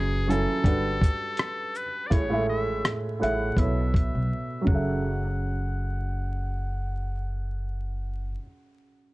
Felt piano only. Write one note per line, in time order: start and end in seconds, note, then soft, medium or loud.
0.00 0.27 F#3 medium
0.00 0.29 C#4 medium
0.00 0.29 E4 medium
0.00 0.67 G#4 medium
0.00 0.66 B4 medium
0.27 0.64 F#3 medium
0.27 0.65 C#4 medium
0.27 0.65 E4 medium
0.27 0.66 A4 medium
0.27 0.66 G#5 medium
0.64 1.82 G3 medium
0.64 1.83 D4 medium
0.64 1.83 F#4 medium
0.64 1.84 A4 medium
0.64 1.84 B4 medium
2.10 2.23 A2 medium
2.10 2.24 A3 medium
2.10 2.24 E4 medium
2.10 2.25 G#4 medium
2.10 2.25 C#5 medium
2.30 2.87 A2 medium
2.30 2.37 G#3 medium
2.30 2.88 E4 medium
2.30 2.88 G#4 medium
2.30 2.89 E5 medium
2.37 2.90 A3 medium
3.20 3.57 A2 medium
3.20 3.57 A3 medium
3.20 3.57 E4 medium
3.20 3.58 G#4 medium
3.20 3.58 E5 medium
3.57 4.67 B2 medium
3.57 4.67 B3 medium
3.57 4.68 E4 medium
3.57 4.68 A4 medium
3.57 4.68 C#5 medium
4.61 8.28 F#3 medium
4.61 8.32 C#4 medium
4.68 8.35 G#4 medium
4.68 8.38 A4 medium
4.75 8.42 E5 medium